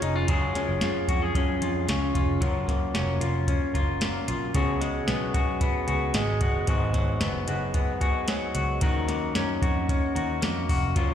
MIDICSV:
0, 0, Header, 1, 5, 480
1, 0, Start_track
1, 0, Key_signature, 6, "major"
1, 0, Tempo, 533808
1, 254, Time_signature, 4, 2, 24, 8
1, 10017, End_track
2, 0, Start_track
2, 0, Title_t, "Clean electric guitar"
2, 0, Program_c, 0, 27
2, 5, Note_on_c, 0, 68, 57
2, 19, Note_on_c, 0, 65, 57
2, 26, Note_on_c, 0, 61, 42
2, 246, Note_on_c, 0, 54, 66
2, 247, Note_off_c, 0, 61, 0
2, 249, Note_off_c, 0, 68, 0
2, 250, Note_off_c, 0, 65, 0
2, 254, Note_on_c, 0, 56, 60
2, 258, Note_on_c, 0, 61, 69
2, 261, Note_on_c, 0, 65, 81
2, 267, Note_on_c, 0, 68, 73
2, 479, Note_off_c, 0, 68, 0
2, 490, Note_off_c, 0, 54, 0
2, 490, Note_on_c, 0, 68, 49
2, 493, Note_off_c, 0, 65, 0
2, 494, Note_off_c, 0, 56, 0
2, 496, Note_off_c, 0, 61, 0
2, 503, Note_on_c, 0, 65, 52
2, 516, Note_on_c, 0, 61, 42
2, 731, Note_off_c, 0, 68, 0
2, 732, Note_off_c, 0, 61, 0
2, 732, Note_on_c, 0, 56, 65
2, 738, Note_off_c, 0, 65, 0
2, 743, Note_on_c, 0, 61, 67
2, 748, Note_on_c, 0, 65, 66
2, 752, Note_on_c, 0, 68, 70
2, 1207, Note_off_c, 0, 56, 0
2, 1208, Note_on_c, 0, 54, 74
2, 1215, Note_off_c, 0, 68, 0
2, 1216, Note_off_c, 0, 61, 0
2, 1218, Note_on_c, 0, 56, 77
2, 1220, Note_on_c, 0, 61, 77
2, 1221, Note_off_c, 0, 65, 0
2, 1225, Note_on_c, 0, 65, 76
2, 1225, Note_on_c, 0, 68, 80
2, 1675, Note_off_c, 0, 56, 0
2, 1685, Note_on_c, 0, 56, 56
2, 1694, Note_off_c, 0, 61, 0
2, 1697, Note_on_c, 0, 61, 66
2, 1698, Note_off_c, 0, 68, 0
2, 1701, Note_off_c, 0, 65, 0
2, 1705, Note_on_c, 0, 65, 61
2, 1710, Note_on_c, 0, 68, 67
2, 1712, Note_off_c, 0, 54, 0
2, 1915, Note_off_c, 0, 68, 0
2, 1926, Note_on_c, 0, 68, 49
2, 1928, Note_off_c, 0, 56, 0
2, 1928, Note_off_c, 0, 65, 0
2, 1934, Note_off_c, 0, 61, 0
2, 1939, Note_on_c, 0, 65, 46
2, 1951, Note_on_c, 0, 61, 37
2, 2159, Note_off_c, 0, 61, 0
2, 2163, Note_on_c, 0, 54, 72
2, 2167, Note_off_c, 0, 65, 0
2, 2168, Note_off_c, 0, 68, 0
2, 2170, Note_on_c, 0, 61, 72
2, 2178, Note_on_c, 0, 65, 76
2, 2182, Note_on_c, 0, 70, 68
2, 2639, Note_off_c, 0, 54, 0
2, 2643, Note_on_c, 0, 54, 64
2, 2649, Note_off_c, 0, 61, 0
2, 2650, Note_off_c, 0, 65, 0
2, 2653, Note_on_c, 0, 61, 63
2, 2656, Note_off_c, 0, 70, 0
2, 2661, Note_on_c, 0, 65, 76
2, 2666, Note_on_c, 0, 70, 76
2, 2873, Note_off_c, 0, 70, 0
2, 2884, Note_on_c, 0, 70, 52
2, 2885, Note_off_c, 0, 65, 0
2, 2886, Note_off_c, 0, 54, 0
2, 2891, Note_off_c, 0, 61, 0
2, 2896, Note_on_c, 0, 65, 50
2, 2909, Note_on_c, 0, 61, 42
2, 3351, Note_off_c, 0, 70, 0
2, 3361, Note_on_c, 0, 70, 52
2, 3364, Note_off_c, 0, 65, 0
2, 3375, Note_on_c, 0, 65, 51
2, 3381, Note_off_c, 0, 61, 0
2, 3384, Note_on_c, 0, 61, 43
2, 3601, Note_off_c, 0, 61, 0
2, 3604, Note_on_c, 0, 54, 57
2, 3605, Note_off_c, 0, 70, 0
2, 3608, Note_off_c, 0, 65, 0
2, 3611, Note_on_c, 0, 61, 67
2, 3619, Note_on_c, 0, 65, 61
2, 3626, Note_on_c, 0, 70, 64
2, 4079, Note_on_c, 0, 49, 71
2, 4081, Note_off_c, 0, 54, 0
2, 4084, Note_off_c, 0, 61, 0
2, 4084, Note_on_c, 0, 56, 67
2, 4087, Note_on_c, 0, 59, 68
2, 4091, Note_off_c, 0, 65, 0
2, 4093, Note_off_c, 0, 70, 0
2, 4095, Note_on_c, 0, 66, 67
2, 4096, Note_on_c, 0, 68, 74
2, 4559, Note_off_c, 0, 56, 0
2, 4563, Note_off_c, 0, 49, 0
2, 4563, Note_on_c, 0, 56, 58
2, 4568, Note_off_c, 0, 59, 0
2, 4572, Note_on_c, 0, 59, 70
2, 4574, Note_off_c, 0, 66, 0
2, 4578, Note_on_c, 0, 66, 62
2, 4583, Note_off_c, 0, 68, 0
2, 4587, Note_on_c, 0, 68, 69
2, 4790, Note_off_c, 0, 68, 0
2, 4801, Note_off_c, 0, 66, 0
2, 4801, Note_on_c, 0, 68, 55
2, 4805, Note_off_c, 0, 56, 0
2, 4810, Note_off_c, 0, 59, 0
2, 4812, Note_on_c, 0, 66, 50
2, 4825, Note_on_c, 0, 59, 43
2, 5273, Note_off_c, 0, 68, 0
2, 5277, Note_on_c, 0, 68, 52
2, 5286, Note_off_c, 0, 66, 0
2, 5290, Note_on_c, 0, 66, 46
2, 5298, Note_off_c, 0, 59, 0
2, 5302, Note_on_c, 0, 59, 50
2, 5512, Note_on_c, 0, 56, 61
2, 5514, Note_off_c, 0, 59, 0
2, 5520, Note_off_c, 0, 66, 0
2, 5522, Note_off_c, 0, 68, 0
2, 5525, Note_on_c, 0, 59, 66
2, 5531, Note_on_c, 0, 66, 73
2, 5539, Note_on_c, 0, 68, 67
2, 5997, Note_on_c, 0, 44, 58
2, 5997, Note_on_c, 0, 51, 59
2, 5998, Note_off_c, 0, 56, 0
2, 6002, Note_off_c, 0, 59, 0
2, 6002, Note_on_c, 0, 54, 70
2, 6006, Note_off_c, 0, 66, 0
2, 6006, Note_on_c, 0, 59, 78
2, 6008, Note_off_c, 0, 68, 0
2, 6009, Note_on_c, 0, 63, 68
2, 6012, Note_on_c, 0, 68, 69
2, 6475, Note_off_c, 0, 54, 0
2, 6478, Note_off_c, 0, 59, 0
2, 6478, Note_on_c, 0, 54, 64
2, 6482, Note_off_c, 0, 44, 0
2, 6489, Note_on_c, 0, 59, 68
2, 6490, Note_off_c, 0, 68, 0
2, 6491, Note_off_c, 0, 63, 0
2, 6494, Note_on_c, 0, 63, 67
2, 6503, Note_on_c, 0, 68, 64
2, 6707, Note_off_c, 0, 68, 0
2, 6715, Note_off_c, 0, 63, 0
2, 6717, Note_on_c, 0, 68, 61
2, 6720, Note_off_c, 0, 59, 0
2, 6723, Note_off_c, 0, 54, 0
2, 6726, Note_on_c, 0, 63, 50
2, 6731, Note_on_c, 0, 59, 52
2, 6740, Note_on_c, 0, 54, 47
2, 7190, Note_off_c, 0, 68, 0
2, 7201, Note_on_c, 0, 68, 66
2, 7207, Note_off_c, 0, 63, 0
2, 7210, Note_off_c, 0, 59, 0
2, 7210, Note_on_c, 0, 63, 49
2, 7219, Note_on_c, 0, 59, 54
2, 7222, Note_off_c, 0, 54, 0
2, 7225, Note_on_c, 0, 54, 48
2, 7428, Note_off_c, 0, 54, 0
2, 7439, Note_off_c, 0, 59, 0
2, 7439, Note_on_c, 0, 54, 61
2, 7444, Note_off_c, 0, 63, 0
2, 7445, Note_off_c, 0, 68, 0
2, 7450, Note_on_c, 0, 59, 66
2, 7454, Note_on_c, 0, 63, 68
2, 7463, Note_on_c, 0, 68, 73
2, 7915, Note_off_c, 0, 51, 0
2, 7919, Note_on_c, 0, 51, 64
2, 7923, Note_off_c, 0, 54, 0
2, 7925, Note_off_c, 0, 59, 0
2, 7926, Note_on_c, 0, 54, 68
2, 7929, Note_on_c, 0, 61, 71
2, 7930, Note_off_c, 0, 63, 0
2, 7933, Note_off_c, 0, 68, 0
2, 7934, Note_on_c, 0, 63, 77
2, 7937, Note_on_c, 0, 70, 81
2, 8400, Note_off_c, 0, 54, 0
2, 8403, Note_on_c, 0, 54, 68
2, 8405, Note_off_c, 0, 51, 0
2, 8407, Note_off_c, 0, 61, 0
2, 8408, Note_off_c, 0, 63, 0
2, 8410, Note_on_c, 0, 61, 67
2, 8419, Note_on_c, 0, 63, 71
2, 8422, Note_off_c, 0, 70, 0
2, 8425, Note_on_c, 0, 70, 79
2, 8634, Note_off_c, 0, 70, 0
2, 8645, Note_on_c, 0, 70, 53
2, 8647, Note_off_c, 0, 54, 0
2, 8649, Note_off_c, 0, 63, 0
2, 8650, Note_off_c, 0, 61, 0
2, 8660, Note_on_c, 0, 63, 56
2, 8671, Note_on_c, 0, 61, 44
2, 9123, Note_off_c, 0, 70, 0
2, 9127, Note_on_c, 0, 70, 58
2, 9131, Note_off_c, 0, 63, 0
2, 9142, Note_on_c, 0, 63, 50
2, 9150, Note_off_c, 0, 61, 0
2, 9153, Note_on_c, 0, 61, 43
2, 9366, Note_off_c, 0, 61, 0
2, 9369, Note_on_c, 0, 54, 68
2, 9370, Note_off_c, 0, 63, 0
2, 9370, Note_off_c, 0, 70, 0
2, 9377, Note_on_c, 0, 61, 64
2, 9381, Note_on_c, 0, 63, 70
2, 9392, Note_on_c, 0, 70, 74
2, 9844, Note_off_c, 0, 54, 0
2, 9848, Note_on_c, 0, 54, 64
2, 9851, Note_off_c, 0, 61, 0
2, 9855, Note_on_c, 0, 61, 71
2, 9856, Note_off_c, 0, 63, 0
2, 9860, Note_off_c, 0, 70, 0
2, 9860, Note_on_c, 0, 65, 75
2, 9864, Note_on_c, 0, 70, 71
2, 10017, Note_off_c, 0, 54, 0
2, 10017, Note_off_c, 0, 61, 0
2, 10017, Note_off_c, 0, 65, 0
2, 10017, Note_off_c, 0, 70, 0
2, 10017, End_track
3, 0, Start_track
3, 0, Title_t, "Clean electric guitar"
3, 0, Program_c, 1, 27
3, 0, Note_on_c, 1, 61, 58
3, 0, Note_on_c, 1, 68, 61
3, 20, Note_on_c, 1, 63, 61
3, 139, Note_off_c, 1, 63, 0
3, 139, Note_on_c, 1, 65, 50
3, 251, Note_off_c, 1, 68, 0
3, 258, Note_on_c, 1, 54, 92
3, 262, Note_on_c, 1, 68, 78
3, 494, Note_off_c, 1, 61, 0
3, 497, Note_on_c, 1, 61, 57
3, 726, Note_off_c, 1, 65, 0
3, 737, Note_on_c, 1, 65, 56
3, 975, Note_off_c, 1, 68, 0
3, 978, Note_on_c, 1, 66, 64
3, 1098, Note_off_c, 1, 66, 0
3, 1098, Note_on_c, 1, 68, 55
3, 1215, Note_off_c, 1, 61, 0
3, 1219, Note_on_c, 1, 61, 54
3, 1452, Note_off_c, 1, 65, 0
3, 1455, Note_on_c, 1, 65, 56
3, 1690, Note_off_c, 1, 61, 0
3, 1693, Note_on_c, 1, 61, 55
3, 1926, Note_off_c, 1, 65, 0
3, 1929, Note_on_c, 1, 65, 53
3, 2165, Note_off_c, 1, 54, 0
3, 2168, Note_on_c, 1, 54, 85
3, 2172, Note_off_c, 1, 68, 0
3, 2176, Note_off_c, 1, 65, 0
3, 2176, Note_on_c, 1, 65, 61
3, 2404, Note_off_c, 1, 61, 0
3, 2407, Note_on_c, 1, 58, 59
3, 2648, Note_on_c, 1, 61, 57
3, 2875, Note_off_c, 1, 65, 0
3, 2885, Note_on_c, 1, 65, 59
3, 3123, Note_off_c, 1, 61, 0
3, 3126, Note_on_c, 1, 61, 58
3, 3360, Note_off_c, 1, 65, 0
3, 3370, Note_on_c, 1, 65, 69
3, 3601, Note_off_c, 1, 58, 0
3, 3612, Note_on_c, 1, 58, 55
3, 3837, Note_off_c, 1, 65, 0
3, 3847, Note_on_c, 1, 65, 70
3, 4084, Note_off_c, 1, 54, 0
3, 4088, Note_off_c, 1, 65, 0
3, 4088, Note_on_c, 1, 49, 80
3, 4093, Note_on_c, 1, 66, 68
3, 4138, Note_off_c, 1, 58, 0
3, 4325, Note_on_c, 1, 56, 55
3, 4558, Note_off_c, 1, 61, 0
3, 4561, Note_on_c, 1, 59, 55
3, 4799, Note_off_c, 1, 66, 0
3, 4803, Note_on_c, 1, 66, 63
3, 5041, Note_off_c, 1, 59, 0
3, 5045, Note_on_c, 1, 59, 62
3, 5282, Note_off_c, 1, 66, 0
3, 5286, Note_on_c, 1, 66, 62
3, 5524, Note_off_c, 1, 56, 0
3, 5528, Note_on_c, 1, 56, 63
3, 5762, Note_off_c, 1, 66, 0
3, 5765, Note_on_c, 1, 66, 62
3, 6005, Note_on_c, 1, 44, 84
3, 6007, Note_off_c, 1, 49, 0
3, 6008, Note_off_c, 1, 66, 0
3, 6011, Note_on_c, 1, 66, 76
3, 6239, Note_off_c, 1, 56, 0
3, 6243, Note_on_c, 1, 54, 57
3, 6480, Note_off_c, 1, 59, 0
3, 6484, Note_on_c, 1, 59, 52
3, 6726, Note_off_c, 1, 66, 0
3, 6730, Note_on_c, 1, 66, 58
3, 6955, Note_off_c, 1, 59, 0
3, 6966, Note_on_c, 1, 59, 62
3, 7202, Note_off_c, 1, 66, 0
3, 7205, Note_on_c, 1, 66, 69
3, 7445, Note_off_c, 1, 54, 0
3, 7449, Note_on_c, 1, 54, 54
3, 7684, Note_off_c, 1, 66, 0
3, 7688, Note_on_c, 1, 66, 64
3, 7928, Note_off_c, 1, 44, 0
3, 7928, Note_on_c, 1, 51, 81
3, 7932, Note_off_c, 1, 66, 0
3, 7935, Note_on_c, 1, 66, 77
3, 7976, Note_off_c, 1, 59, 0
3, 8168, Note_off_c, 1, 54, 0
3, 8171, Note_on_c, 1, 58, 57
3, 8411, Note_on_c, 1, 61, 50
3, 8650, Note_off_c, 1, 66, 0
3, 8654, Note_on_c, 1, 66, 64
3, 8891, Note_off_c, 1, 61, 0
3, 8895, Note_on_c, 1, 61, 54
3, 9128, Note_off_c, 1, 66, 0
3, 9132, Note_on_c, 1, 66, 62
3, 9364, Note_off_c, 1, 58, 0
3, 9368, Note_on_c, 1, 58, 53
3, 9612, Note_off_c, 1, 66, 0
3, 9616, Note_on_c, 1, 66, 65
3, 9852, Note_off_c, 1, 51, 0
3, 9858, Note_on_c, 1, 54, 89
3, 9859, Note_off_c, 1, 66, 0
3, 9862, Note_on_c, 1, 65, 76
3, 10017, Note_off_c, 1, 54, 0
3, 10017, Note_off_c, 1, 58, 0
3, 10017, Note_off_c, 1, 61, 0
3, 10017, Note_off_c, 1, 65, 0
3, 10017, End_track
4, 0, Start_track
4, 0, Title_t, "Picked electric bass"
4, 0, Program_c, 2, 34
4, 19, Note_on_c, 2, 29, 84
4, 221, Note_off_c, 2, 29, 0
4, 258, Note_on_c, 2, 30, 94
4, 460, Note_off_c, 2, 30, 0
4, 618, Note_on_c, 2, 30, 77
4, 718, Note_off_c, 2, 30, 0
4, 738, Note_on_c, 2, 42, 75
4, 939, Note_off_c, 2, 42, 0
4, 972, Note_on_c, 2, 41, 81
4, 1176, Note_off_c, 2, 41, 0
4, 1213, Note_on_c, 2, 42, 82
4, 1417, Note_off_c, 2, 42, 0
4, 1454, Note_on_c, 2, 41, 84
4, 1657, Note_off_c, 2, 41, 0
4, 1692, Note_on_c, 2, 37, 81
4, 1896, Note_off_c, 2, 37, 0
4, 1933, Note_on_c, 2, 29, 84
4, 2136, Note_off_c, 2, 29, 0
4, 2174, Note_on_c, 2, 30, 81
4, 2580, Note_off_c, 2, 30, 0
4, 2653, Note_on_c, 2, 29, 81
4, 2856, Note_off_c, 2, 29, 0
4, 2886, Note_on_c, 2, 29, 66
4, 3193, Note_off_c, 2, 29, 0
4, 3367, Note_on_c, 2, 30, 82
4, 3775, Note_off_c, 2, 30, 0
4, 3851, Note_on_c, 2, 35, 76
4, 4054, Note_off_c, 2, 35, 0
4, 4088, Note_on_c, 2, 37, 103
4, 4496, Note_off_c, 2, 37, 0
4, 4571, Note_on_c, 2, 35, 83
4, 4773, Note_off_c, 2, 35, 0
4, 4805, Note_on_c, 2, 35, 72
4, 5112, Note_off_c, 2, 35, 0
4, 5285, Note_on_c, 2, 37, 75
4, 5490, Note_off_c, 2, 37, 0
4, 5524, Note_on_c, 2, 32, 80
4, 5729, Note_off_c, 2, 32, 0
4, 5766, Note_on_c, 2, 30, 87
4, 5970, Note_off_c, 2, 30, 0
4, 6005, Note_on_c, 2, 32, 101
4, 6414, Note_off_c, 2, 32, 0
4, 6488, Note_on_c, 2, 30, 89
4, 6692, Note_off_c, 2, 30, 0
4, 6731, Note_on_c, 2, 30, 75
4, 7654, Note_off_c, 2, 30, 0
4, 7686, Note_on_c, 2, 37, 84
4, 7891, Note_off_c, 2, 37, 0
4, 7930, Note_on_c, 2, 39, 92
4, 8338, Note_off_c, 2, 39, 0
4, 8411, Note_on_c, 2, 42, 70
4, 8615, Note_off_c, 2, 42, 0
4, 8651, Note_on_c, 2, 41, 75
4, 8957, Note_off_c, 2, 41, 0
4, 9134, Note_on_c, 2, 39, 79
4, 9337, Note_off_c, 2, 39, 0
4, 9375, Note_on_c, 2, 41, 87
4, 9578, Note_off_c, 2, 41, 0
4, 9616, Note_on_c, 2, 29, 74
4, 9819, Note_off_c, 2, 29, 0
4, 9855, Note_on_c, 2, 30, 93
4, 10017, Note_off_c, 2, 30, 0
4, 10017, End_track
5, 0, Start_track
5, 0, Title_t, "Drums"
5, 19, Note_on_c, 9, 42, 75
5, 109, Note_off_c, 9, 42, 0
5, 254, Note_on_c, 9, 42, 86
5, 256, Note_on_c, 9, 36, 101
5, 343, Note_off_c, 9, 42, 0
5, 346, Note_off_c, 9, 36, 0
5, 497, Note_on_c, 9, 38, 37
5, 498, Note_on_c, 9, 42, 64
5, 587, Note_off_c, 9, 38, 0
5, 588, Note_off_c, 9, 42, 0
5, 731, Note_on_c, 9, 38, 95
5, 733, Note_on_c, 9, 42, 80
5, 821, Note_off_c, 9, 38, 0
5, 823, Note_off_c, 9, 42, 0
5, 973, Note_on_c, 9, 36, 81
5, 977, Note_on_c, 9, 42, 69
5, 1063, Note_off_c, 9, 36, 0
5, 1067, Note_off_c, 9, 42, 0
5, 1212, Note_on_c, 9, 36, 81
5, 1217, Note_on_c, 9, 42, 81
5, 1302, Note_off_c, 9, 36, 0
5, 1307, Note_off_c, 9, 42, 0
5, 1456, Note_on_c, 9, 42, 62
5, 1546, Note_off_c, 9, 42, 0
5, 1695, Note_on_c, 9, 42, 77
5, 1700, Note_on_c, 9, 38, 96
5, 1785, Note_off_c, 9, 42, 0
5, 1790, Note_off_c, 9, 38, 0
5, 1933, Note_on_c, 9, 36, 80
5, 1935, Note_on_c, 9, 42, 72
5, 2023, Note_off_c, 9, 36, 0
5, 2025, Note_off_c, 9, 42, 0
5, 2172, Note_on_c, 9, 36, 104
5, 2174, Note_on_c, 9, 42, 94
5, 2262, Note_off_c, 9, 36, 0
5, 2264, Note_off_c, 9, 42, 0
5, 2410, Note_on_c, 9, 36, 81
5, 2416, Note_on_c, 9, 38, 31
5, 2417, Note_on_c, 9, 42, 61
5, 2500, Note_off_c, 9, 36, 0
5, 2506, Note_off_c, 9, 38, 0
5, 2507, Note_off_c, 9, 42, 0
5, 2650, Note_on_c, 9, 38, 88
5, 2652, Note_on_c, 9, 42, 77
5, 2740, Note_off_c, 9, 38, 0
5, 2742, Note_off_c, 9, 42, 0
5, 2889, Note_on_c, 9, 42, 76
5, 2979, Note_off_c, 9, 42, 0
5, 3126, Note_on_c, 9, 36, 91
5, 3129, Note_on_c, 9, 42, 82
5, 3216, Note_off_c, 9, 36, 0
5, 3219, Note_off_c, 9, 42, 0
5, 3367, Note_on_c, 9, 36, 81
5, 3372, Note_on_c, 9, 42, 62
5, 3457, Note_off_c, 9, 36, 0
5, 3462, Note_off_c, 9, 42, 0
5, 3606, Note_on_c, 9, 42, 85
5, 3611, Note_on_c, 9, 38, 100
5, 3696, Note_off_c, 9, 42, 0
5, 3701, Note_off_c, 9, 38, 0
5, 3850, Note_on_c, 9, 42, 74
5, 3940, Note_off_c, 9, 42, 0
5, 4087, Note_on_c, 9, 36, 101
5, 4087, Note_on_c, 9, 42, 92
5, 4177, Note_off_c, 9, 36, 0
5, 4177, Note_off_c, 9, 42, 0
5, 4329, Note_on_c, 9, 38, 34
5, 4330, Note_on_c, 9, 42, 63
5, 4419, Note_off_c, 9, 38, 0
5, 4420, Note_off_c, 9, 42, 0
5, 4565, Note_on_c, 9, 38, 99
5, 4567, Note_on_c, 9, 42, 77
5, 4655, Note_off_c, 9, 38, 0
5, 4657, Note_off_c, 9, 42, 0
5, 4803, Note_on_c, 9, 36, 84
5, 4806, Note_on_c, 9, 42, 65
5, 4893, Note_off_c, 9, 36, 0
5, 4896, Note_off_c, 9, 42, 0
5, 5042, Note_on_c, 9, 36, 93
5, 5044, Note_on_c, 9, 42, 73
5, 5132, Note_off_c, 9, 36, 0
5, 5134, Note_off_c, 9, 42, 0
5, 5284, Note_on_c, 9, 42, 58
5, 5374, Note_off_c, 9, 42, 0
5, 5521, Note_on_c, 9, 42, 90
5, 5525, Note_on_c, 9, 38, 98
5, 5611, Note_off_c, 9, 42, 0
5, 5615, Note_off_c, 9, 38, 0
5, 5761, Note_on_c, 9, 42, 74
5, 5764, Note_on_c, 9, 36, 91
5, 5851, Note_off_c, 9, 42, 0
5, 5854, Note_off_c, 9, 36, 0
5, 6001, Note_on_c, 9, 42, 86
5, 6003, Note_on_c, 9, 36, 106
5, 6091, Note_off_c, 9, 42, 0
5, 6093, Note_off_c, 9, 36, 0
5, 6241, Note_on_c, 9, 36, 87
5, 6241, Note_on_c, 9, 38, 35
5, 6241, Note_on_c, 9, 42, 65
5, 6330, Note_off_c, 9, 38, 0
5, 6331, Note_off_c, 9, 36, 0
5, 6331, Note_off_c, 9, 42, 0
5, 6480, Note_on_c, 9, 38, 94
5, 6482, Note_on_c, 9, 42, 85
5, 6570, Note_off_c, 9, 38, 0
5, 6572, Note_off_c, 9, 42, 0
5, 6722, Note_on_c, 9, 42, 73
5, 6812, Note_off_c, 9, 42, 0
5, 6961, Note_on_c, 9, 36, 86
5, 6961, Note_on_c, 9, 42, 68
5, 7051, Note_off_c, 9, 36, 0
5, 7051, Note_off_c, 9, 42, 0
5, 7203, Note_on_c, 9, 36, 83
5, 7205, Note_on_c, 9, 42, 60
5, 7293, Note_off_c, 9, 36, 0
5, 7295, Note_off_c, 9, 42, 0
5, 7442, Note_on_c, 9, 42, 84
5, 7447, Note_on_c, 9, 38, 95
5, 7532, Note_off_c, 9, 42, 0
5, 7537, Note_off_c, 9, 38, 0
5, 7685, Note_on_c, 9, 42, 70
5, 7775, Note_off_c, 9, 42, 0
5, 7924, Note_on_c, 9, 42, 85
5, 7927, Note_on_c, 9, 36, 110
5, 8014, Note_off_c, 9, 42, 0
5, 8017, Note_off_c, 9, 36, 0
5, 8169, Note_on_c, 9, 38, 30
5, 8170, Note_on_c, 9, 42, 62
5, 8259, Note_off_c, 9, 38, 0
5, 8260, Note_off_c, 9, 42, 0
5, 8409, Note_on_c, 9, 38, 98
5, 8411, Note_on_c, 9, 42, 75
5, 8499, Note_off_c, 9, 38, 0
5, 8501, Note_off_c, 9, 42, 0
5, 8649, Note_on_c, 9, 36, 89
5, 8656, Note_on_c, 9, 42, 70
5, 8739, Note_off_c, 9, 36, 0
5, 8746, Note_off_c, 9, 42, 0
5, 8890, Note_on_c, 9, 36, 93
5, 8896, Note_on_c, 9, 42, 76
5, 8980, Note_off_c, 9, 36, 0
5, 8986, Note_off_c, 9, 42, 0
5, 9139, Note_on_c, 9, 42, 61
5, 9228, Note_off_c, 9, 42, 0
5, 9373, Note_on_c, 9, 42, 76
5, 9377, Note_on_c, 9, 38, 96
5, 9463, Note_off_c, 9, 42, 0
5, 9467, Note_off_c, 9, 38, 0
5, 9613, Note_on_c, 9, 36, 85
5, 9616, Note_on_c, 9, 46, 72
5, 9703, Note_off_c, 9, 36, 0
5, 9706, Note_off_c, 9, 46, 0
5, 9854, Note_on_c, 9, 36, 102
5, 9855, Note_on_c, 9, 42, 87
5, 9943, Note_off_c, 9, 36, 0
5, 9945, Note_off_c, 9, 42, 0
5, 10017, End_track
0, 0, End_of_file